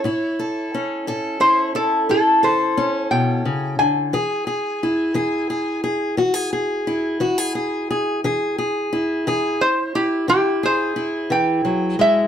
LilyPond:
<<
  \new Staff \with { instrumentName = "Resonator guitar played with a steel bar" } { \time 12/8 \key e \mixolydian \tempo 4. = 59 cis''4 r4 c''8 a'8 a'8 c''4 g''4 gis''8~ | gis''2~ gis''8 r2. r8 | r2 c''8 g'8 g'8 c''4 g''4 e''8 | }
  \new Staff \with { instrumentName = "Steel-string acoustic guitar" } { \time 12/8 \key e \mixolydian << { e'8 a'8 cis'8 a'8 e'8 e'8 e'8 a'8 cis'2 | gis'8 gis'8 e'8 gis'8 gis'8 gis'8 fis'16 gis'16 gis'8 e'8 fis'16 gis'16 gis'8 gis'8 | gis'8 gis'8 e'8 gis'8 r8 e'8 e'8 gis'8 e'2 | } \\ { a,4 r8 a,4 r8 a,4 r8 b,8 cis8 d8 | e4 r8 e4 r8 e4 r8 e4 r8 | e4 r8 e4 r8 e4 r8 e8 fis8 gis8 | } >> }
>>